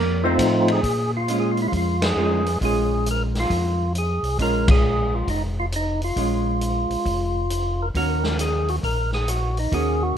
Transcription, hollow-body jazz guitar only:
0.00 0.24 A#3 medium
0.00 0.24 A#4 medium
0.25 0.66 C4 medium
0.25 0.66 C5 medium
1.29 1.96 G#3 medium
1.29 1.96 C#4 medium
1.29 1.97 F4 medium
2.17 2.43 G#3 medium
2.17 2.44 C#4 medium
2.17 2.44 F4 medium
2.61 3.85 G#3 medium
2.61 3.86 C#4 medium
2.61 3.86 F4 medium
4.39 5.63 G#3 medium
4.39 5.64 C#4 medium
4.39 5.64 F4 medium
6.17 7.41 G#3 soft
6.17 7.41 C#4 medium
6.17 7.42 F4 medium
7.95 9.19 D#3 medium
7.95 9.19 A#3 medium
7.95 9.19 C#4 medium
7.95 9.20 F#4 medium
9.72 10.18 D#3 medium
9.72 10.18 A#3 medium
9.72 10.18 C#4 medium
9.72 10.18 F#4 medium

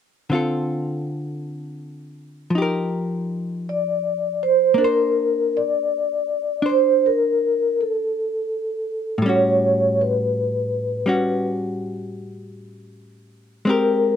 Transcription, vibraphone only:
3.69 4.44 D5 medium
4.43 4.79 C5 medium
4.80 5.55 A#4 medium
5.57 6.61 D5 medium
6.69 7.04 C5 medium
7.06 7.79 A#4 medium
7.81 9.30 A4 medium
9.28 10.01 C#5 medium
10.01 11.42 B4 medium
13.69 14.16 A#4 medium

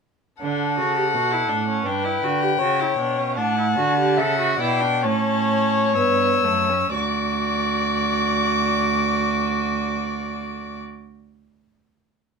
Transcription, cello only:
0.42 0.79 D3 medium
0.78 1.15 C#3 medium
1.14 1.49 B2 medium
1.50 1.85 A2 medium
1.86 2.22 G2 medium
2.23 2.59 D3 medium
2.60 2.97 C#3 medium
2.98 3.38 B2 medium
3.37 3.78 A2 medium
3.77 4.19 D3 medium
4.18 4.59 C#3 medium
4.60 5.05 B2 medium
5.04 5.96 A2 medium
5.95 6.43 G2 medium
6.43 6.93 F#2 medium
6.94 10.79 D2 medium

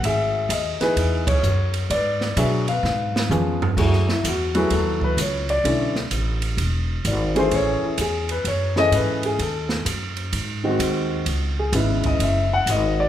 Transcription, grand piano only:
0.05 0.81 G#4 medium
0.05 0.52 E5 medium
0.51 0.82 D#5 medium
0.81 1.40 E3 medium
0.81 1.40 B3 medium
0.81 1.41 D#4 medium
0.81 1.41 G#4 medium
0.81 1.29 B4 medium
1.27 1.71 C#5 medium
1.91 2.69 B4 medium
1.91 2.39 D5 medium
2.37 2.65 F#3 medium
2.37 2.65 B3 medium
2.37 2.65 D4 medium
2.37 2.65 G#4 medium
2.37 2.44 E5 medium
2.69 3.58 B4 medium
2.69 3.58 F5 medium
3.30 3.58 F3 medium
3.30 3.58 B3 medium
3.30 3.58 C#4 medium
3.30 3.58 G#4 medium
3.77 4.05 F#3 medium
3.77 4.05 A3 medium
3.77 4.05 E4 medium
3.77 4.06 G#4 medium
4.11 4.25 E4 medium
4.28 4.56 F#4 medium
4.55 5.14 F#3 medium
4.55 5.14 A3 medium
4.55 5.15 E4 medium
4.55 4.71 G#4 medium
4.55 5.02 B4 medium
4.73 5.01 A4 medium
5.04 5.18 B4 medium
5.21 5.49 C#5 medium
5.50 5.93 D5 medium
5.65 5.92 D3 medium
5.65 5.92 A3 medium
5.65 5.92 C#4 medium
5.65 5.93 E4 medium
7.07 7.36 D5 medium
7.35 7.95 E3 medium
7.35 7.95 A3 medium
7.35 7.96 C#4 medium
7.35 7.96 G#4 medium
7.35 7.53 C5 medium
7.55 7.83 C#5 medium
7.85 7.99 E4 soft
8.01 8.30 G#4 medium
8.31 8.46 B4 medium
8.47 8.76 C#5 medium
8.76 9.36 E3 medium
8.76 9.36 C#4 medium
8.76 9.24 G#4 medium
8.76 9.36 A4 medium
8.76 8.93 D#5 loud
8.95 9.23 B4 medium
9.26 9.40 G#4 medium
9.42 9.84 A4 medium
10.64 11.23 D#3 medium
10.64 11.23 G#3 medium
10.64 11.24 C4 medium
10.64 11.24 F#4 medium
11.59 11.74 G#4 medium
11.74 12.45 C#3 medium
11.74 12.45 G#3 medium
11.74 12.45 B3 medium
11.74 12.45 E4 medium
11.74 12.04 B4 medium
12.06 12.21 D#5 medium
12.23 12.51 E5 medium
12.53 12.68 F#5 loud
12.70 12.98 D#5 medium
13.00 13.09 D5 medium

